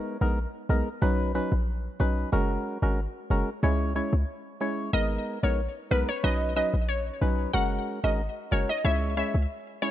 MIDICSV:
0, 0, Header, 1, 4, 480
1, 0, Start_track
1, 0, Key_signature, 5, "minor"
1, 0, Tempo, 652174
1, 1710, Time_signature, 4, 2, 24, 8
1, 7293, End_track
2, 0, Start_track
2, 0, Title_t, "Synth pluck"
2, 0, Program_c, 0, 84
2, 3631, Note_on_c, 0, 75, 105
2, 3733, Note_off_c, 0, 75, 0
2, 4000, Note_on_c, 0, 73, 74
2, 4090, Note_off_c, 0, 73, 0
2, 4352, Note_on_c, 0, 71, 73
2, 4453, Note_off_c, 0, 71, 0
2, 4480, Note_on_c, 0, 73, 85
2, 4569, Note_off_c, 0, 73, 0
2, 4592, Note_on_c, 0, 75, 94
2, 4693, Note_off_c, 0, 75, 0
2, 4832, Note_on_c, 0, 75, 77
2, 4933, Note_off_c, 0, 75, 0
2, 5068, Note_on_c, 0, 73, 74
2, 5414, Note_off_c, 0, 73, 0
2, 5545, Note_on_c, 0, 78, 105
2, 5649, Note_off_c, 0, 78, 0
2, 5917, Note_on_c, 0, 75, 71
2, 6008, Note_off_c, 0, 75, 0
2, 6270, Note_on_c, 0, 73, 82
2, 6372, Note_off_c, 0, 73, 0
2, 6399, Note_on_c, 0, 75, 81
2, 6489, Note_off_c, 0, 75, 0
2, 6511, Note_on_c, 0, 76, 92
2, 6613, Note_off_c, 0, 76, 0
2, 6751, Note_on_c, 0, 76, 75
2, 6853, Note_off_c, 0, 76, 0
2, 7228, Note_on_c, 0, 73, 85
2, 7293, Note_off_c, 0, 73, 0
2, 7293, End_track
3, 0, Start_track
3, 0, Title_t, "Synth stab"
3, 0, Program_c, 1, 62
3, 0, Note_on_c, 1, 56, 93
3, 0, Note_on_c, 1, 59, 84
3, 0, Note_on_c, 1, 63, 84
3, 0, Note_on_c, 1, 70, 104
3, 126, Note_off_c, 1, 56, 0
3, 126, Note_off_c, 1, 59, 0
3, 127, Note_off_c, 1, 63, 0
3, 128, Note_off_c, 1, 70, 0
3, 155, Note_on_c, 1, 56, 79
3, 157, Note_on_c, 1, 59, 71
3, 158, Note_on_c, 1, 63, 69
3, 160, Note_on_c, 1, 70, 89
3, 287, Note_off_c, 1, 56, 0
3, 288, Note_off_c, 1, 59, 0
3, 288, Note_off_c, 1, 63, 0
3, 289, Note_off_c, 1, 70, 0
3, 511, Note_on_c, 1, 56, 77
3, 512, Note_on_c, 1, 59, 73
3, 513, Note_on_c, 1, 63, 72
3, 514, Note_on_c, 1, 70, 87
3, 653, Note_off_c, 1, 56, 0
3, 654, Note_off_c, 1, 59, 0
3, 655, Note_off_c, 1, 63, 0
3, 655, Note_off_c, 1, 70, 0
3, 748, Note_on_c, 1, 54, 94
3, 750, Note_on_c, 1, 61, 86
3, 751, Note_on_c, 1, 63, 84
3, 752, Note_on_c, 1, 71, 104
3, 971, Note_off_c, 1, 54, 0
3, 972, Note_off_c, 1, 61, 0
3, 972, Note_off_c, 1, 63, 0
3, 973, Note_off_c, 1, 71, 0
3, 990, Note_on_c, 1, 54, 77
3, 992, Note_on_c, 1, 61, 69
3, 994, Note_on_c, 1, 63, 69
3, 995, Note_on_c, 1, 71, 88
3, 1133, Note_off_c, 1, 54, 0
3, 1134, Note_off_c, 1, 61, 0
3, 1135, Note_off_c, 1, 63, 0
3, 1135, Note_off_c, 1, 71, 0
3, 1469, Note_on_c, 1, 54, 74
3, 1470, Note_on_c, 1, 61, 69
3, 1472, Note_on_c, 1, 63, 70
3, 1474, Note_on_c, 1, 71, 86
3, 1691, Note_off_c, 1, 54, 0
3, 1692, Note_off_c, 1, 61, 0
3, 1693, Note_off_c, 1, 63, 0
3, 1694, Note_off_c, 1, 71, 0
3, 1709, Note_on_c, 1, 56, 92
3, 1710, Note_on_c, 1, 61, 86
3, 1712, Note_on_c, 1, 66, 83
3, 1714, Note_on_c, 1, 70, 102
3, 2046, Note_off_c, 1, 56, 0
3, 2047, Note_off_c, 1, 61, 0
3, 2047, Note_off_c, 1, 66, 0
3, 2048, Note_off_c, 1, 70, 0
3, 2078, Note_on_c, 1, 56, 77
3, 2080, Note_on_c, 1, 61, 70
3, 2081, Note_on_c, 1, 66, 74
3, 2082, Note_on_c, 1, 70, 83
3, 2208, Note_off_c, 1, 56, 0
3, 2209, Note_off_c, 1, 61, 0
3, 2210, Note_off_c, 1, 66, 0
3, 2210, Note_off_c, 1, 70, 0
3, 2431, Note_on_c, 1, 56, 82
3, 2433, Note_on_c, 1, 61, 73
3, 2434, Note_on_c, 1, 66, 74
3, 2435, Note_on_c, 1, 70, 86
3, 2574, Note_off_c, 1, 56, 0
3, 2575, Note_off_c, 1, 61, 0
3, 2575, Note_off_c, 1, 66, 0
3, 2576, Note_off_c, 1, 70, 0
3, 2671, Note_on_c, 1, 56, 97
3, 2673, Note_on_c, 1, 61, 91
3, 2675, Note_on_c, 1, 64, 88
3, 2675, Note_on_c, 1, 73, 100
3, 2892, Note_off_c, 1, 56, 0
3, 2893, Note_off_c, 1, 61, 0
3, 2894, Note_off_c, 1, 64, 0
3, 2894, Note_off_c, 1, 73, 0
3, 2910, Note_on_c, 1, 56, 78
3, 2912, Note_on_c, 1, 61, 73
3, 2913, Note_on_c, 1, 64, 73
3, 2914, Note_on_c, 1, 73, 82
3, 3053, Note_off_c, 1, 56, 0
3, 3054, Note_off_c, 1, 61, 0
3, 3055, Note_off_c, 1, 64, 0
3, 3055, Note_off_c, 1, 73, 0
3, 3390, Note_on_c, 1, 56, 76
3, 3392, Note_on_c, 1, 61, 69
3, 3393, Note_on_c, 1, 64, 70
3, 3395, Note_on_c, 1, 73, 83
3, 3612, Note_off_c, 1, 56, 0
3, 3613, Note_off_c, 1, 61, 0
3, 3613, Note_off_c, 1, 64, 0
3, 3614, Note_off_c, 1, 73, 0
3, 3630, Note_on_c, 1, 56, 91
3, 3632, Note_on_c, 1, 59, 81
3, 3633, Note_on_c, 1, 63, 89
3, 3636, Note_on_c, 1, 70, 104
3, 3966, Note_off_c, 1, 56, 0
3, 3968, Note_off_c, 1, 59, 0
3, 3968, Note_off_c, 1, 63, 0
3, 3969, Note_off_c, 1, 70, 0
3, 3998, Note_on_c, 1, 56, 80
3, 3998, Note_on_c, 1, 59, 73
3, 4000, Note_on_c, 1, 63, 72
3, 4002, Note_on_c, 1, 70, 84
3, 4128, Note_off_c, 1, 56, 0
3, 4128, Note_off_c, 1, 59, 0
3, 4129, Note_off_c, 1, 63, 0
3, 4130, Note_off_c, 1, 70, 0
3, 4347, Note_on_c, 1, 56, 82
3, 4349, Note_on_c, 1, 59, 71
3, 4350, Note_on_c, 1, 63, 73
3, 4351, Note_on_c, 1, 70, 86
3, 4492, Note_off_c, 1, 56, 0
3, 4492, Note_off_c, 1, 59, 0
3, 4493, Note_off_c, 1, 63, 0
3, 4494, Note_off_c, 1, 70, 0
3, 4588, Note_on_c, 1, 54, 99
3, 4589, Note_on_c, 1, 61, 89
3, 4591, Note_on_c, 1, 63, 91
3, 4592, Note_on_c, 1, 71, 107
3, 4811, Note_off_c, 1, 54, 0
3, 4811, Note_off_c, 1, 61, 0
3, 4812, Note_off_c, 1, 63, 0
3, 4813, Note_off_c, 1, 71, 0
3, 4827, Note_on_c, 1, 54, 76
3, 4828, Note_on_c, 1, 61, 74
3, 4828, Note_on_c, 1, 63, 73
3, 4831, Note_on_c, 1, 71, 84
3, 4971, Note_off_c, 1, 54, 0
3, 4972, Note_off_c, 1, 61, 0
3, 4972, Note_off_c, 1, 63, 0
3, 4973, Note_off_c, 1, 71, 0
3, 5308, Note_on_c, 1, 54, 77
3, 5309, Note_on_c, 1, 61, 67
3, 5311, Note_on_c, 1, 63, 73
3, 5312, Note_on_c, 1, 71, 86
3, 5531, Note_off_c, 1, 54, 0
3, 5531, Note_off_c, 1, 61, 0
3, 5532, Note_off_c, 1, 63, 0
3, 5533, Note_off_c, 1, 71, 0
3, 5546, Note_on_c, 1, 56, 93
3, 5548, Note_on_c, 1, 61, 89
3, 5550, Note_on_c, 1, 66, 86
3, 5551, Note_on_c, 1, 70, 101
3, 5884, Note_off_c, 1, 56, 0
3, 5886, Note_off_c, 1, 61, 0
3, 5886, Note_off_c, 1, 66, 0
3, 5887, Note_off_c, 1, 70, 0
3, 5914, Note_on_c, 1, 56, 79
3, 5916, Note_on_c, 1, 61, 72
3, 5918, Note_on_c, 1, 66, 68
3, 5920, Note_on_c, 1, 70, 88
3, 6046, Note_off_c, 1, 56, 0
3, 6047, Note_off_c, 1, 61, 0
3, 6048, Note_off_c, 1, 66, 0
3, 6049, Note_off_c, 1, 70, 0
3, 6265, Note_on_c, 1, 56, 80
3, 6267, Note_on_c, 1, 61, 69
3, 6269, Note_on_c, 1, 66, 75
3, 6269, Note_on_c, 1, 70, 88
3, 6411, Note_off_c, 1, 56, 0
3, 6411, Note_off_c, 1, 61, 0
3, 6413, Note_off_c, 1, 66, 0
3, 6413, Note_off_c, 1, 70, 0
3, 6508, Note_on_c, 1, 56, 94
3, 6509, Note_on_c, 1, 61, 85
3, 6511, Note_on_c, 1, 64, 87
3, 6513, Note_on_c, 1, 73, 105
3, 6731, Note_off_c, 1, 56, 0
3, 6731, Note_off_c, 1, 61, 0
3, 6732, Note_off_c, 1, 64, 0
3, 6733, Note_off_c, 1, 73, 0
3, 6747, Note_on_c, 1, 56, 77
3, 6749, Note_on_c, 1, 61, 75
3, 6750, Note_on_c, 1, 64, 72
3, 6753, Note_on_c, 1, 73, 89
3, 6891, Note_off_c, 1, 56, 0
3, 6892, Note_off_c, 1, 61, 0
3, 6893, Note_off_c, 1, 64, 0
3, 6894, Note_off_c, 1, 73, 0
3, 7227, Note_on_c, 1, 56, 76
3, 7229, Note_on_c, 1, 61, 67
3, 7230, Note_on_c, 1, 64, 72
3, 7232, Note_on_c, 1, 73, 83
3, 7293, Note_off_c, 1, 56, 0
3, 7293, Note_off_c, 1, 61, 0
3, 7293, Note_off_c, 1, 64, 0
3, 7293, Note_off_c, 1, 73, 0
3, 7293, End_track
4, 0, Start_track
4, 0, Title_t, "808-style bass"
4, 0, Program_c, 2, 38
4, 156, Note_on_c, 2, 34, 87
4, 341, Note_off_c, 2, 34, 0
4, 510, Note_on_c, 2, 35, 92
4, 608, Note_off_c, 2, 35, 0
4, 751, Note_on_c, 2, 35, 106
4, 1032, Note_off_c, 2, 35, 0
4, 1118, Note_on_c, 2, 34, 87
4, 1388, Note_off_c, 2, 34, 0
4, 1472, Note_on_c, 2, 35, 85
4, 1655, Note_off_c, 2, 35, 0
4, 1714, Note_on_c, 2, 30, 100
4, 1896, Note_off_c, 2, 30, 0
4, 2078, Note_on_c, 2, 32, 93
4, 2262, Note_off_c, 2, 32, 0
4, 2432, Note_on_c, 2, 30, 94
4, 2528, Note_off_c, 2, 30, 0
4, 2671, Note_on_c, 2, 37, 102
4, 2952, Note_off_c, 2, 37, 0
4, 3038, Note_on_c, 2, 37, 91
4, 3124, Note_off_c, 2, 37, 0
4, 3631, Note_on_c, 2, 32, 106
4, 3814, Note_off_c, 2, 32, 0
4, 3998, Note_on_c, 2, 34, 86
4, 4181, Note_off_c, 2, 34, 0
4, 4352, Note_on_c, 2, 35, 94
4, 4448, Note_off_c, 2, 35, 0
4, 4592, Note_on_c, 2, 35, 102
4, 4873, Note_off_c, 2, 35, 0
4, 4958, Note_on_c, 2, 34, 87
4, 5228, Note_off_c, 2, 34, 0
4, 5311, Note_on_c, 2, 35, 83
4, 5495, Note_off_c, 2, 35, 0
4, 5550, Note_on_c, 2, 30, 102
4, 5734, Note_off_c, 2, 30, 0
4, 5916, Note_on_c, 2, 32, 89
4, 6101, Note_off_c, 2, 32, 0
4, 6271, Note_on_c, 2, 30, 94
4, 6368, Note_off_c, 2, 30, 0
4, 6511, Note_on_c, 2, 37, 103
4, 6792, Note_off_c, 2, 37, 0
4, 6877, Note_on_c, 2, 37, 93
4, 6964, Note_off_c, 2, 37, 0
4, 7293, End_track
0, 0, End_of_file